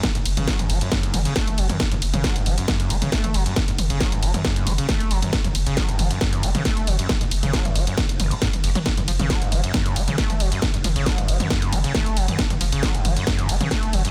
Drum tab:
RD |x-x-x-x-x-x-x-x-|x-x-x-x-x-x-x-x-|x-x-x-x-x-x-x-x-|x-x-x-x-x-x-x-x-|
HH |xxoxxxoxxxoxxxox|xxoxxxoxxxoxxxox|xxoxxxoxxxoxxxox|xxoxxxoxxxoxxxox|
SD |o---o---o---o---|o---o---o---o---|o---o---o---o---|o---o---o---o---|
T2 |o--o-o--o-o--o-o|-o-o--o-o--o-o--|o-o--o-o--o-o--o|-o--o-o--o-o--o-|
BD |o---o---o---o---|o---o---o---o---|o---o---o---o---|o---o---o---o---|

RD |x-x-x-x-x-x-x-x-|x-x-x-x-x-x-x-x-|x-x-x-x-x-x-x-x-|x-x-x-x-x-x-x-x-|
HH |xxoxxxoxxxoxxxox|xxoxxxoxxxoxxxox|xxoxxxoxxxoxxxox|xxoxxxoxxxoxxxox|
SD |o---o---o---o---|o---o---o---o---|o---o---o---o---|o---o---o---o---|
T2 |o--o-o--o-o--o-o|-o-o--o-o--o-o--|o-o--o-o--o-o--o|-o--o-o--o-o--o-|
BD |o---o---o---o---|o---o---o---o---|o---o---o---o---|o---o---o---o---|